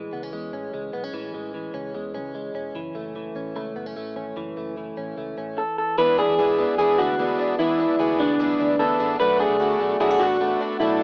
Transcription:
Already playing: clean electric guitar E3 G#3
0.13 fingered electric bass C#2, clean electric guitar B3
0.23 clean electric guitar C#4
0.33 fingered electric bass E2, clean electric guitar G#3
0.53 fingered electric bass A1, clean electric guitar C#4
0.74 fingered electric bass C#2, clean electric guitar G#3
0.93 fingered electric bass B1, clean electric guitar B3
1.04 clean electric guitar C#4
1.13 fingered electric bass A1, clean electric guitar E3
1.34 fingered electric bass A1, clean electric guitar G#3
1.54 clean electric guitar E3
1.74 fingered electric bass C#2, clean electric guitar C#4
1.94 fingered electric bass E2, clean electric guitar G#3
2.14 fingered electric bass C#2, clean electric guitar C#4
2.35 clean electric guitar G#3
2.54 fingered electric bass E1, clean electric guitar C#4
2.75 fingered electric bass F#1, clean electric guitar E3
2.95 fingered electric bass F#1, clean electric guitar A3
3.16 clean electric guitar E3
3.35 fingered electric bass A1, clean electric guitar C#4
3.56 fingered electric bass C#2, clean electric guitar A3
3.76 fingered electric bass F#1, clean electric guitar B3
3.86 clean electric guitar C#4
3.96 fingered electric bass A1, clean electric guitar A3
4.16 fingered electric bass G#1, clean electric guitar C#4
4.37 fingered electric bass F#1, clean electric guitar E3
4.57 fingered electric bass F#1, clean electric guitar A3
4.77 clean electric guitar E3
4.97 fingered electric bass A1, clean electric guitar C#4
5.17 fingered electric bass C#2, clean electric guitar A3
5.38 fingered electric bass A1, clean electric guitar C#4
5.58 clean electric guitar A4
5.78 clean electric guitar A4
5.98 fingered electric bass E2, twelve-string acoustic guitar E3 B3 D4 G#4, clean electric guitar E3 B4, transistor combo organ G#3 B3 D4 E4
6.18 twelve-string acoustic guitar B3 D4 G#4, clean electric guitar D4 G#4
6.29 fingered electric bass E2
6.38 fingered electric bass G#2, twelve-string acoustic guitar E3 B3 D4 G#4, transistor combo organ G#3 B3 D4 E4, clean electric guitar G#4
6.58 fingered electric bass E2, clean electric guitar B3, twelve-string acoustic guitar B3 D4 G#4
6.78 fingered electric bass E2, twelve-string acoustic guitar E3 B3 D4 G#4, transistor combo organ G#3 B3 D4 E4, clean electric guitar G#4
6.98 fingered electric bass D2, twelve-string acoustic guitar B3 D4 G#4, clean electric guitar D4 F#4
7.19 twelve-string acoustic guitar E3 B3 D4 G#4, transistor combo organ G#3 B3 D4 E4, clean electric guitar B3
7.38 twelve-string acoustic guitar B3 D4 G#4, clean electric guitar D4
7.59 fingered electric bass E2, twelve-string acoustic guitar E3 B3 D4 G#4, clean electric guitar E3 E4, transistor combo organ G#3 B3 D4 E4
7.79 twelve-string acoustic guitar B3 D4 G#4, clean electric guitar D4
7.89 fingered electric bass E2
7.99 fingered electric bass D2, twelve-string acoustic guitar E3 B3 D4 G#4, transistor combo organ G#3 B3 D4 F#4, clean electric guitar G#4
8.19 fingered electric bass D2, clean electric guitar B3 D4, twelve-string acoustic guitar D4 G#4
8.39 twelve-string acoustic guitar E3 B3 D4 G#4, transistor combo organ G#3 B3 D4 E4
8.60 fingered electric bass D2, twelve-string acoustic guitar B3 D4 G#4, clean electric guitar D4
8.79 transistor combo organ E3 B3 D4 E4, twelve-string acoustic guitar E3 B3 D4 G#4, clean electric guitar B3 A4
8.99 fingered electric bass A1, twelve-string acoustic guitar B3 D4 G#4, clean electric guitar D4
9.20 fingered electric bass B1, twelve-string acoustic guitar B2 F#3 A3 D4 F#4, clean electric guitar A3 B4, transistor combo organ A3 B3 D4 F#4
9.39 twelve-string acoustic guitar A3 D4 F#4, clean electric guitar D4 G#4
9.49 fingered electric bass B1
9.60 fingered electric bass D2, twelve-string acoustic guitar F#3 A3 D4 F#4, transistor combo organ A3 B3 D4 F#4, clean electric guitar F#4
9.80 fingered electric bass B1, clean electric guitar A3, twelve-string acoustic guitar A3 D4 F#4
10.00 fingered electric bass B1, twelve-string acoustic guitar B2 F#3 A3 D4 F#4, transistor combo organ A3 B3 D4 F#4, clean electric guitar E4 G#4
10.11 clean electric guitar F#4
10.20 fingered electric bass A1, twelve-string acoustic guitar A3 D4 F#4, clean electric guitar D4 F#4
10.40 twelve-string acoustic guitar F#3 A3 D4 F#4, transistor combo organ A3 B3 D4 F#4, clean electric guitar A3
10.61 twelve-string acoustic guitar A3 D4 F#4, clean electric guitar D4
10.80 fingered electric bass B1, twelve-string acoustic guitar B2 F#3 A3 D4 F#4, transistor combo organ A3 B3 D4 A4, clean electric guitar A3 E4

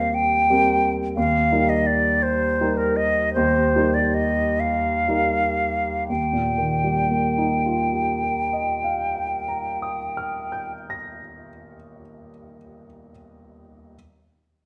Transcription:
Already playing: grand piano D#2 G3 C4 G4 A#4, flute F5
0.14 flute G5
0.50 grand piano G3 C4 G4 A#4
1.16 grand piano D#2, flute F5
1.52 grand piano G3 D#4 G4 A#4
1.69 flute D#5
1.86 flute D5
2.23 flute C5
2.61 grand piano G3 D#4 G4 A#4
2.77 flute A#4
2.96 flute D#5
3.34 grand piano D#2, flute C5
3.76 grand piano G3 D#4 G4 A#4
3.94 flute D5
4.14 flute D#5
4.60 flute F5
5.08 grand piano G3 D#4 G4 A#4
6.09 grand piano D#2, flute G5
6.33 grand piano A#2
6.58 grand piano D#3
6.84 grand piano G3
7.11 grand piano A#3
7.38 grand piano D#4
7.66 grand piano F4
7.93 grand piano G4
8.23 grand piano A#4
8.53 grand piano D#5
8.84 grand piano F5
9.16 grand piano G5
9.48 grand piano A#5
9.82 grand piano D#6
10.17 grand piano F6
10.52 grand piano G6
10.90 grand piano A#6

